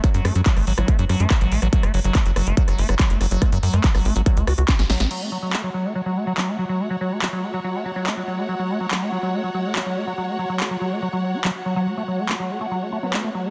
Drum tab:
CC |----------------|----------------|----------------|x---------------|
HH |xxoxxooxxxoxxxox|xxoxxxoxxxoxxxox|xxoxxooxxxoxxxox|----------------|
CP |----x-------x---|----x-------x---|----x-------x---|----x-------x---|
SD |r-r--r-r--r-r--r|-r--r-r--r-r--r-|r--r-r--r-r-oooo|----------------|
BD |o---o---o---o---|o---o---o---o---|o---o---o---o---|----------------|

CC |----------------|----------------|----------------|----------------|
HH |----------------|----------------|----------------|----------------|
CP |----x-------x---|----x-------x---|----x-------x---|----x-------x---|
SD |----------------|----------------|----------------|----------------|
BD |----------------|----------------|----------------|----------------|